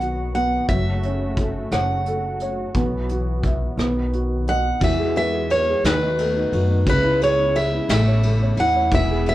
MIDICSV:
0, 0, Header, 1, 6, 480
1, 0, Start_track
1, 0, Tempo, 685714
1, 484, Time_signature, 6, 3, 24, 8
1, 6544, End_track
2, 0, Start_track
2, 0, Title_t, "Steel-string acoustic guitar"
2, 0, Program_c, 0, 25
2, 0, Note_on_c, 0, 78, 81
2, 235, Note_off_c, 0, 78, 0
2, 243, Note_on_c, 0, 78, 78
2, 478, Note_off_c, 0, 78, 0
2, 481, Note_on_c, 0, 76, 76
2, 1205, Note_off_c, 0, 76, 0
2, 1208, Note_on_c, 0, 78, 69
2, 2860, Note_off_c, 0, 78, 0
2, 3141, Note_on_c, 0, 78, 97
2, 3381, Note_off_c, 0, 78, 0
2, 3386, Note_on_c, 0, 76, 92
2, 3612, Note_off_c, 0, 76, 0
2, 3621, Note_on_c, 0, 76, 94
2, 3860, Note_on_c, 0, 73, 82
2, 3861, Note_off_c, 0, 76, 0
2, 4098, Note_off_c, 0, 73, 0
2, 4101, Note_on_c, 0, 71, 83
2, 4817, Note_off_c, 0, 71, 0
2, 4825, Note_on_c, 0, 71, 91
2, 5061, Note_off_c, 0, 71, 0
2, 5064, Note_on_c, 0, 73, 88
2, 5292, Note_on_c, 0, 76, 89
2, 5301, Note_off_c, 0, 73, 0
2, 5521, Note_off_c, 0, 76, 0
2, 5530, Note_on_c, 0, 76, 89
2, 6016, Note_off_c, 0, 76, 0
2, 6019, Note_on_c, 0, 78, 91
2, 6257, Note_off_c, 0, 78, 0
2, 6261, Note_on_c, 0, 76, 93
2, 6492, Note_off_c, 0, 76, 0
2, 6501, Note_on_c, 0, 76, 95
2, 6544, Note_off_c, 0, 76, 0
2, 6544, End_track
3, 0, Start_track
3, 0, Title_t, "Felt piano"
3, 0, Program_c, 1, 0
3, 0, Control_c, 1, 64, 127
3, 0, Note_on_c, 1, 59, 48
3, 0, Note_on_c, 1, 66, 43
3, 0, Note_on_c, 1, 75, 44
3, 9, Note_off_c, 1, 66, 0
3, 9, Note_on_c, 1, 66, 46
3, 241, Note_off_c, 1, 59, 0
3, 251, Note_on_c, 1, 59, 51
3, 461, Note_off_c, 1, 75, 0
3, 472, Note_off_c, 1, 66, 0
3, 481, Note_off_c, 1, 59, 0
3, 491, Control_c, 1, 64, 0
3, 493, Note_on_c, 1, 54, 62
3, 602, Control_c, 1, 64, 127
3, 737, Note_on_c, 1, 61, 48
3, 972, Note_on_c, 1, 69, 49
3, 1213, Note_on_c, 1, 73, 53
3, 1442, Note_off_c, 1, 69, 0
3, 1452, Note_on_c, 1, 69, 48
3, 1662, Note_off_c, 1, 61, 0
3, 1682, Note_off_c, 1, 73, 0
3, 1692, Note_on_c, 1, 73, 54
3, 1900, Note_off_c, 1, 54, 0
3, 1914, Note_off_c, 1, 69, 0
3, 1921, Note_off_c, 1, 73, 0
3, 1926, Note_on_c, 1, 59, 62
3, 1935, Control_c, 1, 64, 0
3, 2064, Control_c, 1, 64, 127
3, 2176, Note_on_c, 1, 66, 50
3, 2414, Note_on_c, 1, 76, 53
3, 2625, Note_off_c, 1, 59, 0
3, 2637, Note_off_c, 1, 66, 0
3, 2643, Note_off_c, 1, 76, 0
3, 2650, Note_on_c, 1, 59, 60
3, 2653, Control_c, 1, 64, 0
3, 2769, Control_c, 1, 64, 127
3, 2896, Note_on_c, 1, 66, 48
3, 3139, Note_on_c, 1, 75, 50
3, 3348, Note_off_c, 1, 59, 0
3, 3358, Note_off_c, 1, 66, 0
3, 3366, Note_off_c, 1, 75, 0
3, 3375, Control_c, 1, 64, 0
3, 3375, Note_on_c, 1, 52, 62
3, 3486, Control_c, 1, 64, 127
3, 3496, Note_on_c, 1, 68, 52
3, 3618, Note_on_c, 1, 71, 53
3, 3726, Note_off_c, 1, 68, 0
3, 3736, Note_on_c, 1, 68, 54
3, 3847, Note_off_c, 1, 71, 0
3, 3857, Note_on_c, 1, 71, 50
3, 3978, Note_off_c, 1, 68, 0
3, 3988, Note_on_c, 1, 68, 52
3, 4070, Note_off_c, 1, 52, 0
3, 4085, Note_off_c, 1, 71, 0
3, 4095, Note_off_c, 1, 68, 0
3, 4097, Control_c, 1, 64, 0
3, 4102, Note_on_c, 1, 51, 61
3, 4211, Control_c, 1, 64, 127
3, 4218, Note_on_c, 1, 63, 53
3, 4342, Note_on_c, 1, 69, 52
3, 4445, Note_off_c, 1, 63, 0
3, 4456, Note_on_c, 1, 63, 53
3, 4576, Note_on_c, 1, 66, 51
3, 4681, Note_off_c, 1, 63, 0
3, 4692, Note_on_c, 1, 63, 52
3, 4792, Note_off_c, 1, 51, 0
3, 4800, Note_off_c, 1, 69, 0
3, 4804, Note_off_c, 1, 66, 0
3, 4806, Note_off_c, 1, 63, 0
3, 4813, Note_on_c, 1, 49, 63
3, 4817, Control_c, 1, 64, 0
3, 4926, Note_on_c, 1, 64, 55
3, 4952, Control_c, 1, 64, 127
3, 5049, Note_on_c, 1, 68, 58
3, 5166, Note_off_c, 1, 64, 0
3, 5177, Note_on_c, 1, 64, 54
3, 5285, Note_off_c, 1, 68, 0
3, 5296, Note_on_c, 1, 68, 53
3, 5405, Note_off_c, 1, 64, 0
3, 5416, Note_on_c, 1, 64, 50
3, 5506, Note_off_c, 1, 49, 0
3, 5523, Note_off_c, 1, 68, 0
3, 5527, Note_off_c, 1, 64, 0
3, 5532, Note_on_c, 1, 57, 64
3, 5533, Control_c, 1, 64, 0
3, 5652, Note_on_c, 1, 73, 54
3, 5667, Control_c, 1, 64, 127
3, 5764, Note_off_c, 1, 57, 0
3, 5774, Note_on_c, 1, 57, 58
3, 5886, Note_off_c, 1, 73, 0
3, 5896, Note_on_c, 1, 73, 51
3, 6015, Note_on_c, 1, 64, 58
3, 6118, Note_off_c, 1, 73, 0
3, 6128, Note_on_c, 1, 73, 56
3, 6233, Note_off_c, 1, 57, 0
3, 6241, Note_off_c, 1, 64, 0
3, 6241, Note_off_c, 1, 73, 0
3, 6250, Control_c, 1, 64, 0
3, 6250, Note_on_c, 1, 52, 70
3, 6375, Note_on_c, 1, 68, 56
3, 6381, Control_c, 1, 64, 127
3, 6497, Note_on_c, 1, 71, 58
3, 6544, Note_off_c, 1, 52, 0
3, 6544, Note_off_c, 1, 68, 0
3, 6544, Note_off_c, 1, 71, 0
3, 6544, End_track
4, 0, Start_track
4, 0, Title_t, "Analog synth pad"
4, 0, Program_c, 2, 89
4, 0, Note_on_c, 2, 51, 72
4, 0, Note_on_c, 2, 54, 61
4, 0, Note_on_c, 2, 59, 58
4, 0, Note_on_c, 2, 66, 72
4, 468, Note_off_c, 2, 59, 0
4, 468, Note_off_c, 2, 66, 0
4, 470, Note_off_c, 2, 51, 0
4, 479, Note_on_c, 2, 49, 71
4, 483, Note_on_c, 2, 57, 64
4, 486, Note_on_c, 2, 66, 77
4, 1907, Note_off_c, 2, 49, 0
4, 1909, Note_off_c, 2, 57, 0
4, 1919, Note_on_c, 2, 52, 71
4, 1924, Note_on_c, 2, 59, 66
4, 2634, Note_on_c, 2, 51, 69
4, 2636, Note_off_c, 2, 52, 0
4, 3338, Note_off_c, 2, 54, 0
4, 3340, Note_off_c, 2, 66, 0
4, 3353, Note_off_c, 2, 59, 0
4, 3354, Note_off_c, 2, 51, 0
4, 3360, Note_on_c, 2, 52, 71
4, 3363, Note_on_c, 2, 56, 63
4, 3364, Note_on_c, 2, 66, 78
4, 3369, Note_on_c, 2, 59, 66
4, 4077, Note_off_c, 2, 52, 0
4, 4078, Note_off_c, 2, 56, 0
4, 4084, Note_on_c, 2, 57, 68
4, 4087, Note_on_c, 2, 51, 70
4, 4790, Note_off_c, 2, 66, 0
4, 4798, Note_off_c, 2, 57, 0
4, 4799, Note_off_c, 2, 51, 0
4, 4808, Note_on_c, 2, 49, 70
4, 4810, Note_on_c, 2, 64, 80
4, 4811, Note_on_c, 2, 56, 61
4, 5520, Note_off_c, 2, 56, 0
4, 5530, Note_on_c, 2, 57, 66
4, 6215, Note_off_c, 2, 59, 0
4, 6228, Note_off_c, 2, 49, 0
4, 6237, Note_off_c, 2, 57, 0
4, 6239, Note_on_c, 2, 59, 65
4, 6243, Note_on_c, 2, 68, 67
4, 6544, Note_off_c, 2, 59, 0
4, 6544, Note_off_c, 2, 64, 0
4, 6544, Note_off_c, 2, 68, 0
4, 6544, End_track
5, 0, Start_track
5, 0, Title_t, "Upright bass"
5, 0, Program_c, 3, 32
5, 0, Note_on_c, 3, 35, 76
5, 401, Note_off_c, 3, 35, 0
5, 480, Note_on_c, 3, 30, 86
5, 1125, Note_off_c, 3, 30, 0
5, 1199, Note_on_c, 3, 30, 81
5, 1844, Note_off_c, 3, 30, 0
5, 1920, Note_on_c, 3, 35, 88
5, 2566, Note_off_c, 3, 35, 0
5, 2641, Note_on_c, 3, 35, 83
5, 3287, Note_off_c, 3, 35, 0
5, 3363, Note_on_c, 3, 40, 98
5, 4008, Note_off_c, 3, 40, 0
5, 4085, Note_on_c, 3, 39, 81
5, 4514, Note_off_c, 3, 39, 0
5, 4566, Note_on_c, 3, 42, 86
5, 4780, Note_off_c, 3, 42, 0
5, 4806, Note_on_c, 3, 37, 97
5, 5447, Note_off_c, 3, 37, 0
5, 5522, Note_on_c, 3, 33, 84
5, 5950, Note_off_c, 3, 33, 0
5, 5997, Note_on_c, 3, 40, 89
5, 6213, Note_off_c, 3, 40, 0
5, 6239, Note_on_c, 3, 28, 100
5, 6544, Note_off_c, 3, 28, 0
5, 6544, End_track
6, 0, Start_track
6, 0, Title_t, "Drums"
6, 4, Note_on_c, 9, 42, 42
6, 74, Note_off_c, 9, 42, 0
6, 243, Note_on_c, 9, 42, 45
6, 313, Note_off_c, 9, 42, 0
6, 481, Note_on_c, 9, 36, 78
6, 483, Note_on_c, 9, 42, 60
6, 551, Note_off_c, 9, 36, 0
6, 553, Note_off_c, 9, 42, 0
6, 722, Note_on_c, 9, 42, 48
6, 792, Note_off_c, 9, 42, 0
6, 959, Note_on_c, 9, 42, 50
6, 960, Note_on_c, 9, 36, 59
6, 1029, Note_off_c, 9, 42, 0
6, 1030, Note_off_c, 9, 36, 0
6, 1200, Note_on_c, 9, 42, 65
6, 1207, Note_on_c, 9, 37, 87
6, 1270, Note_off_c, 9, 42, 0
6, 1277, Note_off_c, 9, 37, 0
6, 1441, Note_on_c, 9, 42, 49
6, 1511, Note_off_c, 9, 42, 0
6, 1679, Note_on_c, 9, 42, 49
6, 1749, Note_off_c, 9, 42, 0
6, 1919, Note_on_c, 9, 42, 62
6, 1921, Note_on_c, 9, 36, 77
6, 1989, Note_off_c, 9, 42, 0
6, 1991, Note_off_c, 9, 36, 0
6, 2162, Note_on_c, 9, 42, 45
6, 2232, Note_off_c, 9, 42, 0
6, 2404, Note_on_c, 9, 36, 65
6, 2406, Note_on_c, 9, 42, 49
6, 2474, Note_off_c, 9, 36, 0
6, 2476, Note_off_c, 9, 42, 0
6, 2647, Note_on_c, 9, 42, 60
6, 2654, Note_on_c, 9, 37, 85
6, 2717, Note_off_c, 9, 42, 0
6, 2724, Note_off_c, 9, 37, 0
6, 2891, Note_on_c, 9, 42, 44
6, 2961, Note_off_c, 9, 42, 0
6, 3131, Note_on_c, 9, 42, 46
6, 3201, Note_off_c, 9, 42, 0
6, 3368, Note_on_c, 9, 51, 62
6, 3369, Note_on_c, 9, 36, 82
6, 3438, Note_off_c, 9, 51, 0
6, 3439, Note_off_c, 9, 36, 0
6, 3611, Note_on_c, 9, 51, 45
6, 3681, Note_off_c, 9, 51, 0
6, 3852, Note_on_c, 9, 51, 51
6, 3922, Note_off_c, 9, 51, 0
6, 4089, Note_on_c, 9, 51, 64
6, 4096, Note_on_c, 9, 38, 89
6, 4159, Note_off_c, 9, 51, 0
6, 4166, Note_off_c, 9, 38, 0
6, 4328, Note_on_c, 9, 51, 50
6, 4398, Note_off_c, 9, 51, 0
6, 4569, Note_on_c, 9, 51, 50
6, 4639, Note_off_c, 9, 51, 0
6, 4807, Note_on_c, 9, 36, 87
6, 4808, Note_on_c, 9, 51, 67
6, 4877, Note_off_c, 9, 36, 0
6, 4878, Note_off_c, 9, 51, 0
6, 5049, Note_on_c, 9, 51, 54
6, 5119, Note_off_c, 9, 51, 0
6, 5287, Note_on_c, 9, 51, 57
6, 5357, Note_off_c, 9, 51, 0
6, 5523, Note_on_c, 9, 51, 71
6, 5530, Note_on_c, 9, 38, 94
6, 5593, Note_off_c, 9, 51, 0
6, 5600, Note_off_c, 9, 38, 0
6, 5762, Note_on_c, 9, 51, 54
6, 5832, Note_off_c, 9, 51, 0
6, 6000, Note_on_c, 9, 51, 54
6, 6070, Note_off_c, 9, 51, 0
6, 6238, Note_on_c, 9, 51, 68
6, 6241, Note_on_c, 9, 36, 91
6, 6308, Note_off_c, 9, 51, 0
6, 6311, Note_off_c, 9, 36, 0
6, 6480, Note_on_c, 9, 51, 49
6, 6544, Note_off_c, 9, 51, 0
6, 6544, End_track
0, 0, End_of_file